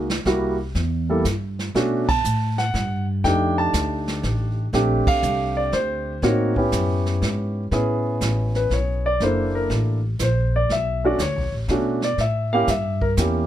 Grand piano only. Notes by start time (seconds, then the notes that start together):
0.26 G3 A#3 E4 F#4
1.09 G3 A#3 E4 A4
1.75 A3 C#4 D4 F#4
2.09 A5
2.58 F#5
3.24 A3 D4 D#4 G4 G5
3.58 A5
4.73 A3 C4 D4 G4
5.08 F5
5.57 D5
5.73 C5
6.23 A#3 C4 D#4 F#4 C#5
6.57 B3 C#4 E4 G4
7.72 B3 C#4 E4 G#4
8.56 B4
8.74 C#5
9.06 D5
9.21 A#3 D4 E4 A4 C5
9.55 A#4
10.23 C5
10.56 D5
10.72 E5
11.04 A3 C#4 D4 F#4 D5
11.22 C#5
11.70 A3 C#4 D4 F#4
12.04 D5
12.21 E5
12.53 A#3 C#4 E4 G4 F5
12.70 E5
13.02 A#4
13.18 A#3 C#4 E4 G4